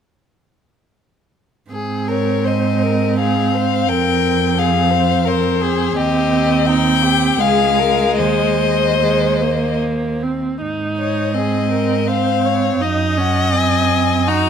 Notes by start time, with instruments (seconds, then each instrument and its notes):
1.70 cello G#2, viola C4, violin G#4
2.08 violin A#4 C#5
2.45 violin C5 D#5
2.83 violin A#4
3.19 violin G#4 F5
3.55 violin C5
3.88 cello F2, violin A#4 G5
4.57 violin G#4 F5
4.91 violin C5
5.25 violin A#4 C5
5.61 violin G#4
5.96 cello D#2, viola C4, violin G4 D#5
6.66 violin D#4 G5
7.03 violin G4
7.38 cello C#2, viola G#3, violin G#4 F5
7.79 violin A#4
8.17 cello D#2, violin C5 D#5
9.02 viola G#3
9.42 viola A#3
10.23 viola C4
10.62 cello G#2, viola D#4
10.98 violin C#5
11.33 viola C4, violin G#4 D#5
11.72 violin A#4
12.07 viola C4, violin C5 F5
12.46 violin C#5
12.81 cello F#2, viola D#4, violin D#5
13.17 viola C#4, violin F#5
13.54 viola C4, violin G#5
14.27 viola D#4, violin F#4 A#5